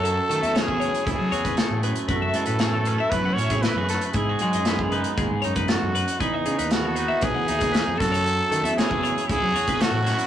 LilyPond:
<<
  \new Staff \with { instrumentName = "Clean electric guitar" } { \time 4/4 \key fis \dorian \tempo 4 = 117 a'8 a'16 e''16 cis''16 a'16 cis''8 a'8 cis''16 b'16 a'8 b'8 | b'16 e''16 a'16 b'16 gis'16 a'16 b'16 e''16 b'16 fis''16 e''16 gis'16 b'16 gis'16 a'16 b'16 | gis'8 gis'16 dis''16 b'16 gis'16 b'8 gis'8 cis''16 b'16 a'8 b'8 | b'16 dis''16 gis'16 b'16 gis'16 a'16 b'16 e''16 b'16 fis''16 e''16 gis'16 b'16 gis'16 a'16 cis''16 |
a'8 a'16 e''16 cis''16 a'16 cis''8 a'8 cis''16 b'16 a'8 b'8 | }
  \new Staff \with { instrumentName = "Trumpet" } { \time 4/4 \key fis \dorian a'4 gis'4 gis'4. r8 | a'2 b'8 cis''8 b'4 | gis'2 r4 fis'4 | dis'4 fis'4 gis'4. a'8~ |
a'4 gis'4 gis'4 fis'4 | }
  \new Staff \with { instrumentName = "Clean electric guitar" } { \time 4/4 \key fis \dorian << { fis'8 a8 cis'16 e'8. e'8 fis'8 a8 gis'8 | fis'4 a8 cis'16 e'8. cis'16 e'16 e'16 fis'16 a8 | e'16 fis'8. b8 dis'4 dis'4. | gis'4 b8 dis'4 dis'8 dis'8 fis'8~ |
fis'8 a8 e'4 e'8 fis'8 a8 cis'16 e'16 | } \\ { <fis, fis>4. cis2 fis,8 | fis,8 e4. fis,2 | gis,8 gis4. gis,4 gis,8 fis,8 | e,2 b,4. fis,8 |
fis4. cis2 fis,8 | } >> }
  \new Staff \with { instrumentName = "Picked electric bass" } { \clef bass \time 4/4 \key fis \dorian fis,8 dis16 e,4~ e,16 cis,16 fis16 e,8. a,8 r16 | fis,8 gis16 a,4~ a,16 fis,16 fis16 a,8. fis,8 r16 | gis,8 fis16 fis,4~ fis,16 dis,16 gis,16 fis,8. fis,8 r16 | e,8 cis16 dis,4~ dis,16 b,,16 e16 dis,8. f,16 fis,8~ |
fis,8 dis16 e,4~ e,16 cis,16 fis16 e,8. a,8 r16 | }
  \new DrumStaff \with { instrumentName = "Drums" } \drummode { \time 4/4 hh8 hh16 hh16 <hh sn>16 bd16 hh16 hh16 <hh bd>8 hh16 <hh bd>16 <hh sn>8 hh16 hh16 | <hh bd>8 hh16 hh16 <hh sn>8 hh8 <hh bd>8 hh16 <hh bd>16 <hh sn>8 <hh sn>16 hh16 | <hh bd>8 hh16 hh16 <hh sn>16 bd16 hh16 hh16 <hh bd>8 hh16 <hh bd>16 <hh sn>8 hh16 hh16 | <hh bd>8 hh16 hh16 <hh sn>8 hh8 <hh bd>8 hh16 <hh bd>16 <hh sn>8 <hh bd sn>16 hh16 |
hh8 hh16 hh16 <hh sn>16 bd16 hh16 hh16 <hh bd>8 hh16 <hh bd>16 <hh sn>8 <hh sn>16 hh16 | }
>>